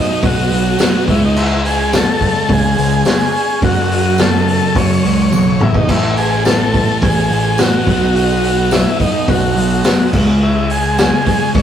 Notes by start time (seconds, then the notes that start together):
Already playing: B2 F#3 B3 D#4
0.23 B1 F#4, kick, open hi-hat
0.50 B1, open hi-hat
0.78 B2 F#3 B3, snare, open hi-hat, tambourine
1.06 C#2 C#3 G#3 C#4 E4, kick, open hi-hat
1.25 D#4
1.36 E4, crash
1.65 G#4, open hi-hat
1.93 A4, snare, open hi-hat, tambourine
2.21 kick, open hi-hat
2.49 C#2 G#4, kick, open hi-hat
2.77 C#2, open hi-hat
3.05 C#3 G#3 C#4 G#4, snare, open hi-hat, tambourine
3.34 open hi-hat
3.61 F#2 C#3 F#3 F#4, kick, open hi-hat
3.91 open hi-hat
4.18 A4, snare, open hi-hat, tambourine
4.48 A4, open hi-hat
4.75 F#2 C#5, kick, open hi-hat
5.04 C#2, open hi-hat
5.32 B1, high tom, tambourine
5.59 A1 F#2 C#3 F#3 E4, mid tom
5.74 D#4, kick
5.88 A1 A2 E3 A3 E4, kick, crash, splash
6.17 G#4, open hi-hat
6.45 A4, snare, open hi-hat, tambourine
6.74 kick, open hi-hat
7.02 A1 G#4, kick, open hi-hat
7.30 A1, open hi-hat
7.58 F#4, snare, open hi-hat, tambourine
7.85 B1 B2 F#3 B3, kick, open hi-hat
8.15 F#4, open hi-hat
8.43 open hi-hat
8.71 E4, snare, open hi-hat, tambourine
9.00 D#4, kick, open hi-hat
9.28 B1 F#4, kick, open hi-hat
9.55 B1, open hi-hat
9.84 B2 F#3 B3, snare, open hi-hat, tambourine
10.12 C#2 C#3 G#3 C#4, kick, crash
10.43 E4
10.70 G#4, open hi-hat
10.98 G#4, snare, open hi-hat, tambourine
11.26 kick, open hi-hat
11.54 C#2 C#5, kick, open hi-hat